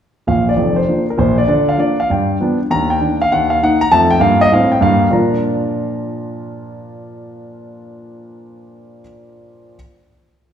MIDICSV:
0, 0, Header, 1, 2, 480
1, 0, Start_track
1, 0, Key_signature, -2, "major"
1, 0, Tempo, 303183
1, 431, Time_signature, 4, 2, 24, 8
1, 16671, End_track
2, 0, Start_track
2, 0, Title_t, "Grand piano"
2, 0, Program_c, 0, 0
2, 430, Note_on_c, 0, 46, 52
2, 442, Note_on_c, 0, 77, 71
2, 443, Note_on_c, 0, 34, 47
2, 701, Note_off_c, 0, 77, 0
2, 774, Note_on_c, 0, 74, 64
2, 815, Note_off_c, 0, 46, 0
2, 823, Note_off_c, 0, 34, 0
2, 896, Note_on_c, 0, 29, 52
2, 896, Note_on_c, 0, 41, 52
2, 1169, Note_off_c, 0, 74, 0
2, 1207, Note_on_c, 0, 72, 61
2, 1287, Note_off_c, 0, 29, 0
2, 1287, Note_off_c, 0, 41, 0
2, 1386, Note_on_c, 0, 62, 26
2, 1396, Note_on_c, 0, 58, 28
2, 1402, Note_on_c, 0, 53, 31
2, 1622, Note_off_c, 0, 72, 0
2, 1652, Note_off_c, 0, 62, 0
2, 1660, Note_off_c, 0, 58, 0
2, 1664, Note_off_c, 0, 53, 0
2, 1746, Note_on_c, 0, 70, 54
2, 1861, Note_on_c, 0, 46, 58
2, 1872, Note_off_c, 0, 70, 0
2, 1876, Note_on_c, 0, 34, 60
2, 1879, Note_on_c, 0, 72, 67
2, 2140, Note_off_c, 0, 72, 0
2, 2184, Note_on_c, 0, 74, 69
2, 2251, Note_off_c, 0, 46, 0
2, 2259, Note_off_c, 0, 34, 0
2, 2324, Note_off_c, 0, 74, 0
2, 2339, Note_on_c, 0, 50, 64
2, 2348, Note_on_c, 0, 74, 69
2, 2614, Note_off_c, 0, 74, 0
2, 2671, Note_on_c, 0, 77, 70
2, 2754, Note_off_c, 0, 50, 0
2, 2812, Note_off_c, 0, 77, 0
2, 2813, Note_on_c, 0, 53, 35
2, 2818, Note_on_c, 0, 62, 38
2, 2824, Note_on_c, 0, 58, 34
2, 2840, Note_on_c, 0, 74, 74
2, 3083, Note_off_c, 0, 53, 0
2, 3087, Note_off_c, 0, 62, 0
2, 3091, Note_off_c, 0, 58, 0
2, 3101, Note_off_c, 0, 74, 0
2, 3163, Note_on_c, 0, 77, 71
2, 3300, Note_off_c, 0, 77, 0
2, 3324, Note_on_c, 0, 43, 51
2, 3343, Note_on_c, 0, 79, 60
2, 3728, Note_off_c, 0, 43, 0
2, 3807, Note_on_c, 0, 53, 36
2, 3814, Note_on_c, 0, 59, 47
2, 3836, Note_on_c, 0, 62, 46
2, 4067, Note_off_c, 0, 53, 0
2, 4073, Note_off_c, 0, 59, 0
2, 4088, Note_off_c, 0, 62, 0
2, 4146, Note_off_c, 0, 79, 0
2, 4280, Note_on_c, 0, 39, 61
2, 4289, Note_on_c, 0, 82, 93
2, 4545, Note_off_c, 0, 82, 0
2, 4594, Note_on_c, 0, 79, 75
2, 4685, Note_off_c, 0, 39, 0
2, 4756, Note_on_c, 0, 58, 38
2, 4760, Note_on_c, 0, 51, 37
2, 4767, Note_on_c, 0, 62, 41
2, 4997, Note_off_c, 0, 79, 0
2, 5018, Note_off_c, 0, 58, 0
2, 5021, Note_off_c, 0, 51, 0
2, 5026, Note_off_c, 0, 62, 0
2, 5090, Note_on_c, 0, 77, 84
2, 5223, Note_off_c, 0, 77, 0
2, 5253, Note_on_c, 0, 39, 58
2, 5258, Note_on_c, 0, 78, 82
2, 5510, Note_off_c, 0, 78, 0
2, 5544, Note_on_c, 0, 77, 76
2, 5651, Note_off_c, 0, 39, 0
2, 5687, Note_off_c, 0, 77, 0
2, 5744, Note_on_c, 0, 63, 54
2, 5747, Note_on_c, 0, 51, 44
2, 5754, Note_on_c, 0, 58, 39
2, 5754, Note_on_c, 0, 78, 86
2, 5998, Note_off_c, 0, 63, 0
2, 5998, Note_off_c, 0, 78, 0
2, 6000, Note_off_c, 0, 51, 0
2, 6006, Note_off_c, 0, 58, 0
2, 6034, Note_on_c, 0, 82, 100
2, 6172, Note_off_c, 0, 82, 0
2, 6197, Note_on_c, 0, 41, 66
2, 6199, Note_on_c, 0, 81, 106
2, 6215, Note_on_c, 0, 57, 68
2, 6457, Note_off_c, 0, 81, 0
2, 6500, Note_on_c, 0, 79, 95
2, 6577, Note_off_c, 0, 41, 0
2, 6588, Note_off_c, 0, 57, 0
2, 6644, Note_off_c, 0, 79, 0
2, 6648, Note_on_c, 0, 43, 67
2, 6665, Note_on_c, 0, 77, 85
2, 6671, Note_on_c, 0, 58, 64
2, 6929, Note_off_c, 0, 77, 0
2, 6986, Note_on_c, 0, 75, 92
2, 7039, Note_off_c, 0, 43, 0
2, 7053, Note_off_c, 0, 58, 0
2, 7127, Note_off_c, 0, 75, 0
2, 7155, Note_on_c, 0, 45, 63
2, 7179, Note_on_c, 0, 77, 78
2, 7193, Note_on_c, 0, 60, 55
2, 7428, Note_off_c, 0, 77, 0
2, 7466, Note_on_c, 0, 79, 69
2, 7535, Note_off_c, 0, 45, 0
2, 7558, Note_off_c, 0, 60, 0
2, 7606, Note_off_c, 0, 79, 0
2, 7614, Note_on_c, 0, 43, 71
2, 7637, Note_on_c, 0, 77, 79
2, 7653, Note_on_c, 0, 58, 61
2, 8002, Note_off_c, 0, 43, 0
2, 8025, Note_off_c, 0, 58, 0
2, 8039, Note_off_c, 0, 77, 0
2, 8076, Note_on_c, 0, 46, 52
2, 8082, Note_on_c, 0, 62, 44
2, 8090, Note_on_c, 0, 65, 47
2, 8094, Note_on_c, 0, 53, 49
2, 8094, Note_on_c, 0, 74, 43
2, 8103, Note_on_c, 0, 70, 44
2, 8119, Note_on_c, 0, 82, 55
2, 8419, Control_c, 0, 64, 127
2, 14237, Note_off_c, 0, 46, 0
2, 14242, Note_off_c, 0, 62, 0
2, 14246, Note_off_c, 0, 65, 0
2, 14248, Note_off_c, 0, 53, 0
2, 14248, Note_off_c, 0, 74, 0
2, 14252, Note_off_c, 0, 70, 0
2, 14261, Note_off_c, 0, 82, 0
2, 15445, Control_c, 0, 64, 0
2, 16671, End_track
0, 0, End_of_file